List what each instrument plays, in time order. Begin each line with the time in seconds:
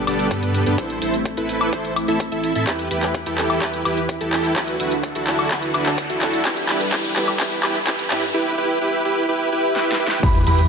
Already playing: analog synth pad G3 D4 A4 B4
0.07 sub bass G1, supersaw synth B3 D4 G4 A4 D5, open hi-hat, high woodblock
0.19 closed hi-hat
0.31 sub bass G2, supersaw synth B3 G4 B4, kick, closed hi-hat
0.43 closed hi-hat
0.55 open hi-hat
0.66 sub bass G2, supersaw synth B3 D4 G4 A4 B4, closed hi-hat
0.78 sub bass A1, analog synth pad A3 C4 E4, supersaw synth E4 A4 C5, kick, closed hi-hat
0.90 closed hi-hat
1.02 sub bass A1, supersaw synth E4 A4 C5, open hi-hat
1.14 closed hi-hat
1.25 kick, closed hi-hat
1.37 sub bass A1, supersaw synth E4 A4 B4, closed hi-hat
1.49 open hi-hat
1.61 closed hi-hat, high woodblock
1.73 sub bass A1, supersaw synth E4 A4 C5, kick, closed hi-hat
1.85 closed hi-hat
1.96 open hi-hat, high woodblock
2.08 sub bass A1, supersaw synth E4 A4 E5, closed hi-hat
2.20 kick, closed hi-hat
2.32 sub bass A1, supersaw synth E4 A4 E5, closed hi-hat
2.44 open hi-hat
2.55 sub bass A2, supersaw synth E4 A4 E5, closed hi-hat
2.67 sub bass E2, analog synth pad E3 E4 G4 B4, supersaw synth E4 G4 B4, kick, clap, closed hi-hat, riser
2.79 closed hi-hat
2.91 sub bass E2, supersaw synth E4 G4 B4, open hi-hat
3.03 clap, closed hi-hat
3.14 kick, closed hi-hat
3.26 sub bass E2, supersaw synth E4 G4 A4, closed hi-hat
3.38 clap, open hi-hat
3.50 closed hi-hat, high woodblock
3.62 sub bass E2, supersaw synth E4 G4 B4, kick, clap, closed hi-hat
3.74 closed hi-hat
3.85 sub bass E2, supersaw synth E4 G4 B4, open hi-hat, high woodblock
3.97 closed hi-hat
4.09 kick, closed hi-hat
4.21 sub bass E2, supersaw synth E4 G4 A4, closed hi-hat
4.33 clap, open hi-hat
4.44 closed hi-hat
4.56 sub bass D2, analog synth pad D3 D4 F#4 A4, supersaw synth E4 F#4 B4, kick, clap, closed hi-hat
4.68 closed hi-hat
4.80 sub bass D2, supersaw synth E4 F#4 B4, open hi-hat
4.92 closed hi-hat
5.03 kick, closed hi-hat
5.15 sub bass D2, supersaw synth E4 F#4 A4, closed hi-hat
5.27 clap, open hi-hat
5.39 closed hi-hat, high woodblock
5.51 sub bass D2, supersaw synth E4 F#4 B4, kick, clap, closed hi-hat
5.62 closed hi-hat
5.74 sub bass D2, supersaw synth E4 F#4 B4, open hi-hat, high woodblock
5.86 clap, closed hi-hat
5.98 kick, closed hi-hat
6.10 sub bass D2, supersaw synth E4 F#4 A4, closed hi-hat
6.22 clap, open hi-hat
6.33 closed hi-hat
6.45 sub bass G1, analog synth pad G3 B4, supersaw synth B4, kick, clap, closed hi-hat
6.57 closed hi-hat
6.69 sub bass G1, supersaw synth E4 G4 B4, clap, open hi-hat
6.81 closed hi-hat
6.92 sub bass G1, supersaw synth E4 G4 B4, kick, clap, closed hi-hat
7.04 closed hi-hat
7.16 sub bass G1, supersaw synth E4 G4 B4, clap, open hi-hat
7.28 closed hi-hat, high woodblock
7.40 sub bass G1, supersaw synth E4 G4 B4, kick, clap, closed hi-hat
7.52 closed hi-hat
7.63 sub bass G1, supersaw synth E4 G4 B4, clap, open hi-hat, high woodblock
7.75 closed hi-hat
7.87 sub bass G1, supersaw synth E4 G4 B4, kick, clap, closed hi-hat
7.99 closed hi-hat
8.11 sub bass G2, supersaw synth E4 G4 B4, clap, open hi-hat
8.22 closed hi-hat
8.34 supersaw synth E4 G4 B4
8.58 supersaw synth E4 G4 B4
8.81 supersaw synth E4 G4 B4
9.05 supersaw synth E4 G4 B4
9.29 supersaw synth E4 G4 B4, swell
9.52 supersaw synth E4 G4 B4
9.76 supersaw synth E4 G4 B4, snare
9.92 snare
10.00 supersaw synth E4 G4 B4
10.07 snare
10.23 sub bass E2, analog synth pad E3 E4 G4 B4, supersaw synth E4 G4, grand piano B5, kick, closed hi-hat, crash, impact
10.35 closed hi-hat
10.47 sub bass E2, supersaw synth E4 G4 B4, grand piano B5, open hi-hat
10.59 closed hi-hat